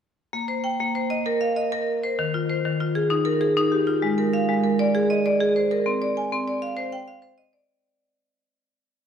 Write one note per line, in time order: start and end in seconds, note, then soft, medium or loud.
0.33 0.64 A#3 medium
0.48 0.94 C5 soft
0.64 1.10 G5 medium
0.80 1.11 A#3 medium
0.95 1.41 C5 medium
1.10 1.55 D#5 medium
1.26 1.57 A#4 medium
1.41 1.87 F5 medium
1.56 2.03 D#5 medium
1.72 2.03 A#4 medium
2.03 2.34 C5 medium
2.19 2.49 D#3 medium
2.34 2.79 F4 medium
2.49 2.96 C5 medium
2.65 2.96 D#3 medium
2.80 3.26 F4 medium
2.95 3.40 G#4 medium
3.10 3.41 D#4 medium
3.25 3.72 A#4 medium
3.41 3.87 G#4 medium
3.57 3.88 D#4 medium
3.72 4.18 G4 medium
3.87 4.18 F4 medium
4.02 4.33 G#3 medium
4.18 4.62 A#4 medium
4.33 4.79 F5 medium
4.49 4.79 G#3 medium
4.64 5.10 A#4 medium
4.79 5.25 D5 medium
4.95 5.25 G#4 medium
5.10 5.56 D#5 medium
5.26 5.71 D5 medium
5.40 5.71 G#4 medium
5.56 6.02 C5 soft
5.71 6.02 A#4 medium
5.86 6.16 C4 medium
6.02 6.46 D5 medium
6.17 6.62 G#5 medium
6.32 6.62 C4 medium
6.48 6.93 D5 medium
6.62 7.06 F5 medium
6.77 7.07 C5 medium
6.92 7.38 G5 medium
7.08 7.53 F5 medium
7.22 7.53 C5 medium
7.38 7.83 D#5 medium
7.53 7.83 D5 medium